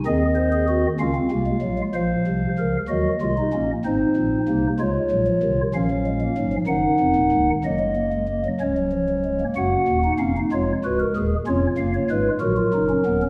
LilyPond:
<<
  \new Staff \with { instrumentName = "Pipe organ" } { \time 6/8 \key fis \major \tempo 4. = 63 << { dis''4. eis''4. | eis''4. dis''4. | bis'4. cis''4. | eis''4. fis''4. |
dis''4. cis''4. | fis''4 eis''8 cis''8 b'16 ais'16 r8 | cis''8 eis''16 cis''16 b'8 ais'4. | } \\ { gis'8 bis'16 gis'16 fis'8 eis'4. | bis'4 ais'8 fis'8 eis'16 dis'16 cis'8 | dis'4. eis'4. | cis'4. dis'4. |
ais4. cis'4. | fis'8. dis'16 cis'16 dis'16 eis'8 fis'8 gis'8 | eis'4. fis'16 eis'16 dis'16 cis'16 b16 cis'16 | } >> }
  \new Staff \with { instrumentName = "Pipe organ" } { \clef bass \time 6/8 \key fis \major << { bis4. cis'16 bis16 ais16 gis16 fis16 gis16 | eis4. fis8 gis8 ais8 | bis4 ais8 gis8 fis16 eis16 dis8 | eis16 fis16 gis16 ais16 fis16 eis16 dis4. |
fis16 gis16 ais16 gis16 ais16 fis16 gis16 fis16 eis16 fis16 gis16 ais16 | ais4. gis4. | cis'8 ais8 gis8 fis4. | } \\ { <dis, dis>4. <cis, cis>8 <bis,, bis,>8 <ais,, ais,>8 | <ais,, ais,>8 <bis,, bis,>8 <cis, cis>8 <dis, dis>8 <bis,, bis,>8 <ais,, ais,>8 | <gis,, gis,>8 <ais,, ais,>8 <bis,, bis,>8 <cis, cis>8 <ais,, ais,>8 <bis,, bis,>8 | <ais,, ais,>4 <gis,, gis,>8 <fis,, fis,>8 <eis,, eis,>16 <dis,, dis,>16 <cis,, cis,>8 |
<fis,, fis,>4. <cis,, cis,>4. | <fis,, fis,>8 <dis,, dis,>8 <eis,, eis,>8 <eis,, eis,>8 <cis,, cis,>8 <dis,, dis,>8 | <eis,, eis,>8 <fis,, fis,>8 <gis,, gis,>8 <ais,, ais,>8 <fis,, fis,>8 <dis,, dis,>8 | } >> }
>>